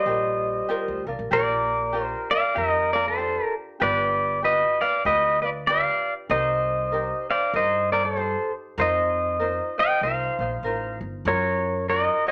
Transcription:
0.00 1.03 G3 medium
0.00 1.04 C5 medium
0.00 1.04 D#5 medium
0.06 0.59 A#1 medium
0.06 0.69 F4 medium
0.06 0.68 G4 medium
0.06 0.70 A#4 medium
0.69 1.07 F4 medium
0.69 1.06 G4 medium
0.69 1.06 A#4 loud
0.88 1.05 D2 medium
1.07 1.18 C2 medium
1.07 1.30 D4 medium
1.07 1.31 F4 medium
1.07 1.30 A#4 medium
1.19 1.30 A#1 medium
1.31 2.12 A#1 loud
1.31 1.93 D4 medium
1.31 1.94 F4 medium
1.31 1.92 G4 medium
1.31 1.93 A#4 medium
1.31 2.28 A#4 medium
1.31 2.05 D5 medium
1.93 2.31 D4 medium
1.93 2.30 F4 medium
1.93 2.31 G4 medium
1.93 2.29 A#4 medium
2.05 2.32 C5 medium
2.30 2.56 D4 soft
2.30 2.55 F4 soft
2.30 2.55 A#4 medium
2.30 2.55 D5 medium
2.30 2.56 F5 loud
2.55 3.37 F2 medium
2.55 2.93 F4 medium
2.55 2.93 G4 medium
2.55 2.92 A#4 medium
2.55 2.93 D#5 medium
2.93 3.17 D4 soft
2.93 3.18 F4 medium
2.93 3.18 A#4 medium
2.93 3.06 A#4 medium
2.93 3.06 D5 medium
3.08 3.54 A4 medium
3.08 3.53 C5 medium
3.17 3.80 D4 medium
3.17 3.80 F4 medium
3.17 3.79 G4 medium
3.80 4.62 G1 loud
3.80 4.43 D4 medium
3.80 4.43 F4 medium
3.80 4.42 G4 medium
3.80 4.43 B4 medium
3.80 4.39 B4 medium
3.80 4.45 D5 loud
4.43 4.81 F4 medium
4.43 4.80 G4 medium
4.43 4.79 B4 medium
4.43 4.80 B4 medium
4.43 4.82 D#5 medium
4.81 5.06 D4 soft
4.81 5.06 F4 medium
4.81 5.05 B4 medium
4.81 5.03 D5 medium
4.81 5.03 F5 loud
5.05 5.86 D2 medium
5.05 5.42 F4 medium
5.05 5.43 G4 medium
5.05 5.41 B4 medium
5.05 5.42 D#5 loud
5.42 5.68 D4 soft
5.42 5.67 F4 soft
5.42 5.49 B4 medium
5.42 5.67 B4 medium
5.42 5.49 D5 medium
5.67 6.30 D4 medium
5.67 6.30 F4 medium
5.67 6.29 G4 medium
5.67 6.30 B4 medium
5.67 6.14 D5 medium
5.67 6.14 F5 loud
6.30 7.10 C2 loud
6.30 6.93 D#4 medium
6.30 6.92 G4 medium
6.30 6.92 A#4 medium
6.30 6.94 C5 medium
6.30 7.26 C5 medium
6.30 7.33 D#5 loud
6.92 7.30 D#4 medium
6.92 7.30 G4 medium
6.92 7.29 A#4 medium
6.92 7.29 C5 medium
7.30 7.54 D#4 soft
7.30 7.54 G4 medium
7.30 7.54 C5 medium
7.30 7.53 D5 medium
7.30 7.55 F5 medium
7.53 8.34 G2 medium
7.53 7.92 D#4 medium
7.53 7.92 G4 medium
7.53 7.91 A#4 medium
7.53 7.90 C5 medium
7.53 7.92 D#5 medium
7.92 8.15 D#4 soft
7.92 8.16 G4 soft
7.92 8.04 A#4 medium
7.92 8.16 C5 medium
7.92 8.04 D5 medium
8.05 8.51 A4 medium
8.05 8.54 C5 medium
8.16 8.78 D#4 medium
8.16 8.78 G4 medium
8.16 8.79 C5 medium
8.78 9.59 F2 loud
8.78 9.39 D#4 medium
8.78 9.40 F4 medium
8.78 9.39 A#4 medium
8.78 9.40 C5 medium
8.78 9.75 C5 medium
8.78 9.78 D#5 medium
9.39 9.78 D#4 medium
9.39 9.78 F4 medium
9.39 9.77 A#4 medium
9.39 9.77 C5 medium
9.78 10.02 D#4 soft
9.78 10.03 F4 medium
9.78 10.02 C5 medium
9.78 10.01 D#5 medium
9.78 10.02 G5 loud
10.01 10.26 C2 medium
10.01 10.40 D#4 medium
10.01 10.40 F4 medium
10.01 10.40 A#4 medium
10.01 10.99 C5 medium
10.01 10.39 C5 medium
10.01 10.99 F5 medium
10.39 10.61 A#1 medium
10.39 10.64 D#4 soft
10.39 10.65 F4 soft
10.39 10.64 C5 medium
10.63 10.97 A1 medium
10.63 11.26 D#4 medium
10.63 11.27 F4 medium
10.63 11.26 A#4 medium
10.63 11.27 C5 medium
11.01 11.23 G1 medium
11.25 12.06 F#2 loud
11.25 11.88 F4 medium
11.25 11.89 F#4 medium
11.25 11.88 A#4 medium
11.25 11.86 A#4 medium
11.25 11.89 C#5 medium
11.88 12.27 F4 medium
11.88 12.26 F#4 medium
11.88 12.26 A#4 medium
11.88 12.24 A#4 medium
11.88 12.25 C#5 medium
11.88 12.28 D#5 medium
12.27 12.32 F#4 medium
12.27 12.32 C#5 medium
12.27 12.32 F5 medium

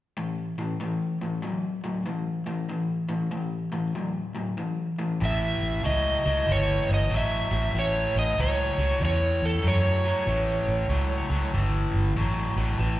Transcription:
0.17 0.54 A2 medium
0.17 0.55 E3 medium
0.58 0.79 A2 medium
0.58 0.79 E3 medium
0.80 1.17 A2 medium
0.80 1.18 E3 medium
1.21 1.41 A2 medium
1.21 1.42 E3 medium
1.42 1.80 A2 medium
1.42 1.80 F#3 medium
1.84 2.04 A2 medium
1.84 2.04 F#3 medium
2.06 2.43 A2 medium
2.06 2.43 E3 medium
2.46 2.67 A2 medium
2.46 2.67 E3 medium
2.69 3.06 A2 medium
2.69 3.06 E3 medium
3.09 3.30 A2 medium
3.09 3.30 E3 medium
3.31 3.69 A2 medium
3.31 3.69 E3 medium
3.72 3.93 A2 medium
3.72 3.93 E3 medium
3.95 4.32 A2 medium
3.95 4.32 F#3 medium
4.35 4.56 A2 medium
4.35 4.56 F#3 medium
4.57 4.95 A2 medium
4.57 4.95 E3 medium
4.99 5.19 A2 medium
4.99 5.19 E3 medium
5.21 5.53 A1 medium
5.21 5.80 A2 medium
5.21 5.80 E3 medium
5.25 5.86 E5 loud
5.62 5.79 A1 medium
5.83 6.16 C#2 medium
5.83 6.21 A2 medium
5.83 6.21 F#3 medium
5.83 6.51 D#5 loud
6.25 6.43 C#2 medium
6.25 6.45 A2 medium
6.25 6.46 F#3 medium
6.47 6.79 G1 medium
6.47 7.06 A2 medium
6.47 7.06 E3 medium
6.52 6.92 C#5 medium
6.89 7.06 G1 medium
6.94 7.14 D#5 medium
7.10 7.42 A1 medium
7.10 7.47 A2 medium
7.10 7.47 F#3 medium
7.17 7.79 E5 loud
7.51 7.69 A1 medium
7.51 7.71 A2 medium
7.51 7.72 F#3 medium
7.75 8.06 A1 medium
7.75 8.33 A2 medium
7.75 8.33 E3 medium
7.79 8.15 C#5 loud
8.16 8.32 A1 medium
8.16 8.40 D#5 medium
8.38 8.69 C#2 medium
8.38 8.74 A2 medium
8.38 8.75 F#3 medium
8.38 9.04 C#5 medium
8.78 8.95 C#2 medium
8.78 8.98 A2 medium
8.78 8.99 F#3 medium
8.99 9.32 E2 medium
8.99 9.58 A2 medium
8.99 9.59 E3 medium
9.05 9.45 C#5 medium
9.42 9.59 E2 medium
9.42 9.66 A4 medium
9.61 10.12 F#2 medium
9.61 9.99 A2 medium
9.61 10.00 F#3 medium
9.68 11.51 C#5 medium
10.04 10.24 A2 medium
10.04 10.25 F#3 medium
10.27 10.58 A1 loud
10.27 10.85 A2 medium
10.27 10.85 E3 medium
10.68 10.85 A1 medium
10.89 11.20 C#2 medium
10.89 11.26 A2 medium
10.89 11.26 F#3 medium
11.30 11.47 C#2 medium
11.30 11.50 A2 medium
11.30 11.50 F#3 medium
11.53 11.84 G1 medium
11.53 12.12 A2 medium
11.53 12.12 E3 medium
11.94 12.11 G1 medium
12.16 12.47 A1 medium
12.16 12.53 A2 medium
12.16 12.53 F#3 medium
12.56 12.74 A1 medium
12.56 12.77 A2 medium
12.56 12.77 F#3 medium
12.78 13.00 A1 medium
12.78 13.00 A2 medium
12.78 13.00 E3 medium

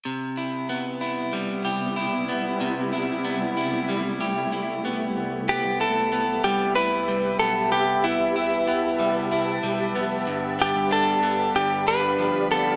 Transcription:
0.05 2.59 C3 medium
0.05 5.12 C3 medium
0.05 5.12 G3 medium
0.05 2.58 B3 medium
0.05 5.12 E4 medium
0.37 1.01 E4 soft
0.69 2.28 B3 medium
1.01 1.96 E4 medium
1.33 3.88 G3 medium
1.65 4.20 G4 soft
1.96 2.92 E4 medium
2.29 3.24 B3 soft
2.61 5.16 C3 medium
2.61 5.14 A3 medium
2.93 3.57 E4 soft
3.24 4.84 B3 medium
3.57 4.52 E4 medium
3.89 6.44 G3 medium
4.21 7.71 G4 soft
4.52 5.80 E4 soft
4.85 5.48 B3 soft
5.16 5.62 C2 medium
5.16 10.23 G4 medium
5.16 10.23 B4 medium
5.16 10.23 E5 medium
5.16 7.69 B5 medium
5.48 6.12 B3 medium
5.48 5.80 G4 medium
5.64 6.40 C2 medium
5.80 6.75 E4 medium
5.80 6.44 A4 medium
6.12 7.40 B3 medium
6.44 7.36 C2 medium
6.44 7.08 G3 medium
6.44 6.75 G4 medium
6.75 8.35 E4 medium
6.75 7.39 B4 medium
7.08 8.99 G3 medium
7.39 7.70 B1 medium
7.39 8.03 B3 medium
7.39 7.71 A4 medium
7.72 8.17 C2 medium
7.72 8.05 G4 medium
7.72 10.24 A5 medium
8.04 8.67 B3 medium
8.04 9.91 E4 medium
8.20 9.59 C2 medium
8.36 9.30 E4 medium
8.68 9.95 B3 medium
8.99 9.63 G3 medium
9.32 10.34 E4 medium
9.63 9.94 B1 loud
9.63 12.18 G3 medium
9.95 10.25 F1 medium
9.95 10.58 B3 medium
10.27 10.73 G1 medium
10.27 12.76 G2 medium
10.27 12.76 G4 medium
10.27 12.76 D5 medium
10.27 12.76 F5 medium
10.27 12.76 B5 medium
10.59 11.22 B3 medium
10.59 10.92 G4 medium
10.75 11.51 G1 loud
10.91 11.86 D4 medium
10.91 11.55 A4 medium
11.23 12.50 B3 medium
11.55 12.46 G1 loud
11.55 12.76 D3 medium
11.55 11.88 G4 medium
11.87 12.76 D4 medium
11.87 12.47 B4 medium
12.19 12.76 F3 medium
12.51 12.76 F1 medium
12.51 12.76 B3 soft
12.51 12.76 A4 medium

